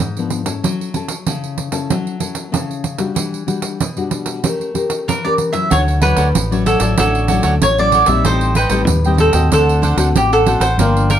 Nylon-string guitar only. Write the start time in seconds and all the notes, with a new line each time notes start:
0.00 G#2
0.18 F3 B3 D4
0.45 C#4 E4 A4
0.64 F#3
0.95 C#4 E4 A4
1.27 C#3 C#4 E4 A4
1.72 C#4 E4 A4
1.90 F#3
2.20 C#4 E4 A4
2.52 C#3 C#4 E4 A4
2.98 G3 D4 F#4
3.15 E3
3.46 G3 D4 F#4
3.81 B2
3.97 G3 D4 F#4
4.43 A3 C#4 G4 A#4
4.74 C#4 G4 A#4
5.08 E3
5.24 C#4 G4 A#4
5.53 F#3 C#4 E4
5.72 D3
6.02 F#3 C#4 E4
6.35 A2
6.51 F#3 C#4 E4
6.80 F#3 C#4 E4
6.99 D3
7.30 F#3 C#4 E4
7.62 A2
7.78 F#3 C#4 E4
8.07 G3 C4 D#4
8.25 A2
8.70 G3 C4 D#4
8.88 A2
9.05 G3 C4 D#4
9.34 A3 C4 F#4
9.52 D3
9.96 A3 C4 F#4
10.15 A2
10.46 A3 C4 F#4
10.79 G2 F3 A#3 D4